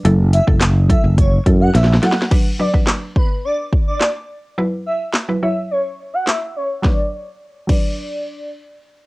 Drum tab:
CC |------------------------------------------------|x-----------------------------------------------|------------------------------------------------|------------------x-----------------------------|
HH |x-----x-----x-----x-----x-----x-----x-----x-----|------------------------------------------------|------------------------------------------------|------------------------------------------------|
CP |------------x-----------------------------------|------------x-----------------------x-----------|------------x-----------------------x-----------|------------------------------------------------|
SD |------------o-----------------------o-o-o-o-o-o-|------------o-----------------------o-----------|------------o-----------------------o-----------|o-----------------------------------------------|
BD |---------o--------o-----o-----o-----------------|o--------o--------o-----------o-----------------|------------------------------------------------|o-----------------o-----------------------------|